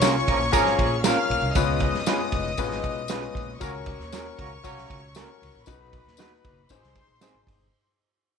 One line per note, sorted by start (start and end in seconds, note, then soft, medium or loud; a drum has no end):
0.00 0.20 C2 medium
0.00 0.14 A#3 medium
0.00 0.42 C#4 medium
0.00 0.14 C#4 medium
0.00 0.42 F4 medium
0.00 0.15 F4 medium
0.00 0.15 A#4 loud
0.00 1.01 C#5 medium
0.00 0.42 C#5 medium
0.00 1.01 C#6 loud
0.00 snare loud
0.00 ride medium
0.00 tambourine loud
0.27 0.48 A#1 loud
0.27 0.38 F3 medium
0.27 0.38 A#3 medium
0.27 0.38 C#4 medium
0.27 0.38 A#4 medium
0.27 kick loud
0.27 ride medium
0.52 0.74 G#1 medium
0.52 0.89 F3 medium
0.52 0.89 A#3 loud
0.52 0.93 C#4 medium
0.52 0.89 C#4 medium
0.52 0.93 F4 medium
0.52 0.93 G#4 loud
0.52 0.89 A#4 loud
0.52 kick medium
0.52 ride medium
0.52 tambourine medium
0.66 snare soft
0.78 1.09 A#1 loud
0.78 kick medium
0.78 ride medium
1.04 1.16 A#3 loud
1.04 1.10 C4 medium
1.04 1.16 C#4 loud
1.04 1.45 F4 medium
1.04 1.17 F4 loud
1.04 1.45 A#4 medium
1.04 1.17 A#4 loud
1.04 1.55 F5 medium
1.04 1.55 F6 loud
1.04 snare loud
1.04 ride medium
1.04 tambourine loud
1.10 1.48 C#4 medium
1.30 1.40 A#1 medium
1.30 ride medium
1.41 1.52 C2 loud
1.55 1.86 C#2 loud
1.55 1.96 G#3 medium
1.55 1.96 B3 medium
1.55 1.96 C#4 medium
1.55 1.96 F4 medium
1.55 1.96 B4 loud
1.55 3.57 D#5 medium
1.55 3.57 D#6 loud
1.55 kick loud
1.55 ride medium
1.55 tambourine medium
1.80 kick loud
1.80 ride medium
1.94 2.24 F2 medium
1.94 snare soft
2.06 2.47 G#3 medium
2.06 2.19 G#3 medium
2.06 2.48 B3 medium
2.06 2.48 C#4 medium
2.06 2.19 C#4 loud
2.06 2.47 F4 medium
2.06 2.20 F4 medium
2.06 2.48 B4 medium
2.06 2.20 B4 medium
2.06 snare loud
2.06 ride medium
2.06 tambourine loud
2.32 2.53 F1 loud
2.32 kick loud
2.32 ride medium
2.57 2.78 G#1 loud
2.57 2.99 G#3 loud
2.57 2.99 B3 medium
2.57 2.99 C#4 medium
2.57 2.99 F4 medium
2.57 2.99 B4 loud
2.57 kick loud
2.57 ride medium
2.57 tambourine medium
2.71 snare soft
2.84 3.25 B1 loud
2.84 kick loud
2.84 ride medium
3.08 3.50 G#3 medium
3.08 3.22 G#3 loud
3.08 3.50 B3 medium
3.08 3.50 C#4 medium
3.08 3.22 C#4 loud
3.08 3.50 F4 medium
3.08 3.22 F4 loud
3.08 3.50 B4 medium
3.08 3.22 B4 loud
3.08 snare loud
3.08 ride medium
3.08 tambourine loud
3.35 3.55 A#1 medium
3.35 kick loud
3.35 ride medium
3.60 3.92 C#2 loud
3.60 3.72 F#3 medium
3.60 3.72 A#3 medium
3.60 4.01 C#4 medium
3.60 3.72 C#4 medium
3.60 4.01 F#4 medium
3.60 4.02 A#4 loud
3.60 3.72 A#4 loud
3.60 5.63 C#5 medium
3.60 5.63 C#6 loud
3.60 kick loud
3.60 ride medium
3.60 tambourine medium
3.86 kick loud
3.86 ride medium
3.99 4.30 D#2 medium
3.99 snare soft
4.12 4.25 A#3 medium
4.12 4.53 C#4 medium
4.12 4.25 C#4 medium
4.12 4.53 F#4 medium
4.12 4.25 F#4 medium
4.12 4.19 G#4 medium
4.12 4.26 A#4 medium
4.12 snare loud
4.12 ride medium
4.12 tambourine loud
4.20 4.57 A#4 medium
4.38 4.59 C#2 loud
4.38 4.49 F#3 medium
4.38 4.49 A#3 medium
4.38 4.49 C#4 medium
4.38 4.49 A#4 medium
4.38 kick loud
4.38 ride medium
4.63 4.85 C2 medium
4.63 5.01 F#3 medium
4.63 5.01 A#3 medium
4.63 5.04 C#4 medium
4.63 5.01 C#4 medium
4.63 5.05 F#4 medium
4.63 5.01 A#4 loud
4.63 5.05 C#5 loud
4.63 kick medium
4.63 ride medium
4.63 tambourine medium
4.78 snare soft
4.90 5.21 C#2 loud
4.90 kick medium
4.90 ride medium
5.15 5.28 A#3 medium
5.15 5.56 C#4 medium
5.15 5.28 C#4 loud
5.15 5.56 F#4 medium
5.15 5.28 F#4 loud
5.15 5.22 A4 medium
5.15 5.29 A#4 loud
5.15 snare loud
5.15 ride medium
5.15 tambourine loud
5.23 5.60 A#4 medium
5.42 5.52 C#2 medium
5.42 open hi-hat soft
5.42 ride medium
5.55 5.65 A#1 medium
5.66 5.98 B1 loud
5.66 6.08 D#4 medium
5.66 6.08 F#4 medium
5.66 6.68 B4 medium
5.66 6.08 B4 loud
5.66 6.68 B5 medium
5.66 kick loud
5.66 hi-hat pedal medium
5.66 ride medium
5.66 tambourine medium
5.93 kick loud
5.93 ride medium
6.05 6.36 D#2 medium
6.05 snare soft
6.17 6.31 B3 medium
6.17 6.59 D#4 medium
6.17 6.31 D#4 medium
6.17 6.59 F#4 medium
6.17 6.31 F#4 medium
6.17 6.60 B4 medium
6.17 6.32 B4 medium
6.17 snare loud
6.17 ride medium
6.17 tambourine medium
6.45 6.65 F#1 medium
6.45 kick loud
6.45 ride medium
6.69 6.80 G#1 loud
6.69 7.11 D#4 medium
6.69 7.11 G#4 medium
6.69 7.72 C5 medium
6.69 7.12 C5 loud
6.69 7.72 C6 medium
6.69 kick loud
6.69 ride medium
6.69 tambourine medium
6.83 6.93 C2 loud
6.83 snare soft
6.95 kick medium
6.95 ride medium
7.08 7.29 A#1 medium
7.21 7.34 C4 loud
7.21 7.63 D#4 medium
7.21 7.34 D#4 loud
7.21 7.63 G#4 medium
7.21 7.35 G#4 medium
7.21 7.63 C5 medium
7.21 7.35 C5 loud
7.21 snare loud
7.21 ride medium
7.21 tambourine loud
7.34 7.44 G#1 medium
7.47 7.68 G1 loud
7.47 kick loud
7.47 open hi-hat soft
7.47 ride medium